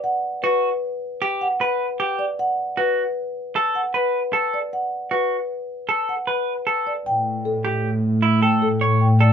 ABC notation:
X:1
M:6/4
L:1/8
Q:1/4=154
K:D
V:1 name="Marimba"
f z B z4 f B z2 d | f z B z4 f B z2 d | f z B z4 f B z2 d | g z A z4 g A z g d |]
V:2 name="Clean electric guitar"
z2 F z3 G z B z G z | z2 F z3 A z B z A z | z2 F z3 A z B z A z | z3 G z2 E A z c z A |]
V:3 name="Double bass section" clef=bass
z12 | z12 | z12 | A,,12 |]